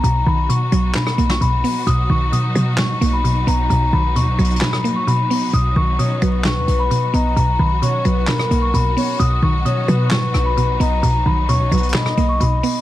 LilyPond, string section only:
\new Staff \with { instrumentName = "String section" } { \time 4/4 \key b \major \tempo 4 = 131 << { fis'1~ | fis'1~ | fis'1 | fis'1~ |
fis'1~ | fis'1~ | fis'1 | } \\ { <b, fis dis'>1~ | <b, fis dis'>1~ | <b, fis dis'>1~ | <b, fis dis'>1~ |
<b, fis dis'>1 | <b, fis dis'>1~ | <b, fis dis'>1 | } >> }